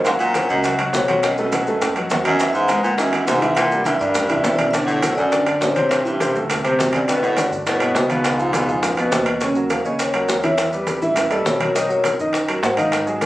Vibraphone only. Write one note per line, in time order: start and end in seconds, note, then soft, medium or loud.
0.04 0.11 F5 loud
0.19 0.47 F#5 loud
0.49 0.77 D#5 medium
0.94 1.07 C#5 medium
1.09 1.24 C#5 medium
1.23 1.37 D#5 loud
1.38 1.93 D#5 medium
2.25 2.52 D#5 loud
2.53 2.81 E5 loud
2.83 2.99 F#5 loud
2.98 3.28 D#5 medium
3.27 3.55 E5 medium
3.55 3.86 F#5 loud
3.84 3.99 E5 medium
3.99 4.55 D5 loud
4.56 4.73 D5 medium
4.71 4.87 E5 loud
4.85 5.17 F#5 loud
5.15 5.44 D5 medium
5.60 5.74 C#5 medium
5.75 5.91 C#5 medium
5.89 6.04 E5 loud
6.05 6.60 E5 medium
6.95 7.01 D5 medium
7.09 7.23 E5 loud
7.24 7.50 F#5 loud
7.67 7.94 F#5 loud
8.10 9.08 F5 medium
9.70 9.84 F5 medium
9.85 9.99 D#5 medium
10.00 10.41 C#5 medium
10.43 10.58 C#5 medium
11.17 11.31 E5 medium
11.31 11.45 D#5 medium
11.45 11.86 C#5 medium
11.90 12.04 C#5 loud
12.63 12.77 F#5 medium
12.77 12.92 F5 medium
12.92 13.26 D#5 medium